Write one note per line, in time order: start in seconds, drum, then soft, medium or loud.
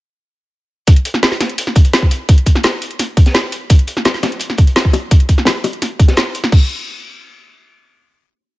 0.87 kick loud
0.87 closed hi-hat medium
0.87 closed hi-hat loud
0.96 closed hi-hat soft
1.05 closed hi-hat medium
1.14 snare soft
1.23 snare loud
1.23 closed hi-hat loud
1.23 closed hi-hat medium
1.32 snare soft
1.32 closed hi-hat soft
1.40 snare soft
1.40 closed hi-hat medium
1.49 closed hi-hat soft
1.58 closed hi-hat medium
1.67 snare soft
1.75 kick loud
1.75 closed hi-hat medium
1.84 closed hi-hat soft
1.93 snare loud
1.93 closed hi-hat loud
1.93 closed hi-hat medium
2.02 kick medium
2.11 closed hi-hat medium
2.29 kick loud
2.29 closed hi-hat loud
2.29 closed hi-hat medium
2.38 closed hi-hat soft
2.46 kick medium
2.46 closed hi-hat medium
2.55 snare soft
2.63 snare loud
2.63 closed hi-hat medium
2.82 closed hi-hat medium
2.91 closed hi-hat soft
2.99 snare soft
2.99 closed hi-hat medium
3.17 kick loud
3.17 closed hi-hat medium
3.26 snare soft
3.26 closed hi-hat soft
3.34 snare loud
3.34 closed hi-hat medium
3.52 closed hi-hat medium
3.70 kick loud
3.70 closed hi-hat medium
3.79 closed hi-hat soft
3.87 closed hi-hat medium
3.97 snare soft
4.05 snare loud
4.05 closed hi-hat medium
4.05 high bongo medium
4.14 snare soft
4.14 closed hi-hat soft
4.23 snare medium
4.23 snare soft
4.23 closed hi-hat medium
4.23 high bongo medium
4.32 closed hi-hat soft
4.39 closed hi-hat medium
4.50 snare soft
4.58 kick loud
4.58 closed hi-hat medium
4.67 closed hi-hat soft
4.76 snare loud
4.76 closed hi-hat medium
4.76 closed hi-hat loud
4.85 kick medium
4.93 closed hi-hat medium
4.93 high bongo medium
5.11 kick loud
5.11 closed hi-hat medium
5.20 closed hi-hat soft
5.29 kick medium
5.29 closed hi-hat medium
5.38 snare soft
5.45 snare loud
5.45 closed hi-hat loud
5.45 closed hi-hat medium
5.45 high bongo medium
5.64 closed hi-hat medium
5.64 high bongo medium
5.73 closed hi-hat soft
5.82 snare soft
5.82 closed hi-hat medium
5.99 kick loud
5.99 closed hi-hat medium
6.08 snare soft
6.08 closed hi-hat soft
6.08 high bongo soft
6.17 snare loud
6.17 closed hi-hat medium
6.35 closed hi-hat medium
6.44 snare medium
6.52 kick loud
6.52 crash medium